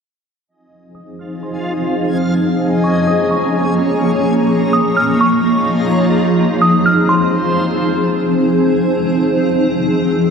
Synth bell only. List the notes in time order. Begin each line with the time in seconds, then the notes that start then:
0.95 D#6
1.19 F6
1.43 C6
2.84 C#6
3.07 D#6
3.31 C#6
4.73 D#6
4.97 F6
5.21 C#6
6.62 D#6
6.86 F6
7.09 C6